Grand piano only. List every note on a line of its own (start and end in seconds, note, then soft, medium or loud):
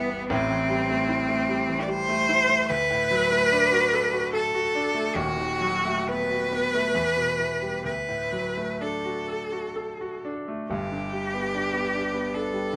0.00 0.25 G1 medium
0.00 0.26 G2 medium
0.00 0.33 E3 medium
0.00 0.33 G3 medium
0.00 0.10 B3 medium
0.00 0.33 E4 medium
0.10 0.30 B3 medium
0.30 2.66 A1 medium
0.30 2.67 A2 medium
0.50 0.82 E3 medium
0.69 1.02 G3 medium
0.89 1.22 A3 medium
1.09 1.41 E4 medium
1.29 1.61 A3 medium
1.49 1.81 G3 medium
1.69 2.01 E3 medium
1.88 2.20 G3 medium
2.09 2.41 A3 medium
2.29 2.62 E4 medium
2.49 2.70 A3 medium
2.70 5.13 D2 medium
2.90 3.24 A2 medium
3.11 3.44 F#3 medium
3.32 3.65 A3 medium
3.52 3.85 D4 medium
3.72 4.05 F#4 medium
3.93 4.26 A4 medium
4.13 4.46 F#4 medium
4.33 4.66 A4 medium
4.55 4.88 F#4 medium
4.75 5.09 D4 medium
4.95 5.16 A3 medium
5.15 6.90 D#1 medium
5.15 6.91 D#2 medium
5.37 5.76 D#3 medium
5.61 5.99 F#3 medium
5.85 6.22 A3 medium
6.09 6.44 B3 medium
6.31 6.65 F#4 medium
6.53 6.87 B3 medium
6.75 6.96 A3 medium
6.94 7.83 E2 medium
7.17 7.54 B2 soft
7.40 7.77 E3 medium
7.61 7.86 G3 medium
7.84 10.64 D2 medium
8.08 8.47 A2 soft
8.32 8.71 F#3 medium
8.57 8.95 A3 soft
8.81 9.19 D4 medium
9.05 9.43 F#4 medium
9.28 9.67 A4 soft
9.52 9.90 F#4 soft
9.76 10.14 A4 medium
10.01 10.38 F#4 soft
10.25 10.61 D4 medium
10.48 10.70 A3 soft
10.70 12.76 G1 medium
10.70 12.76 G2 medium
10.92 11.25 D3 soft
11.12 11.46 G3 soft
11.34 11.66 B3 soft
11.54 11.86 D4 soft
11.74 12.06 B3 medium
11.94 12.26 D4 soft
12.14 12.45 B3 medium
12.34 12.65 D4 medium
12.53 12.76 G3 soft